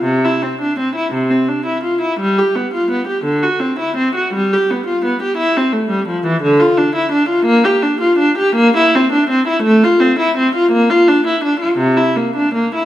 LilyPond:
\new Staff \with { instrumentName = "Viola" } { \time 6/8 \key g \mixolydian \tempo 4. = 56 c16 e'16 c'16 d'16 c'16 e'16 c16 c'16 d'16 e'16 f'16 e'16 | g16 g'16 b16 f'16 b16 g'16 d16 fis'16 c'16 e'16 c'16 fis'16 | g16 g'16 b16 f'16 b16 g'16 e'16 c'16 a16 g16 f16 e16 | \key c \mixolydian d16 f'16 d'16 e'16 d'16 f'16 bes16 g'16 d'16 f'16 d'16 g'16 |
bes16 e'16 c'16 d'16 c'16 e'16 a16 f'16 c'16 e'16 c'16 f'16 | bes16 f'16 d'16 e'16 d'16 f'16 c16 e'16 bes16 d'16 bes16 e'16 | }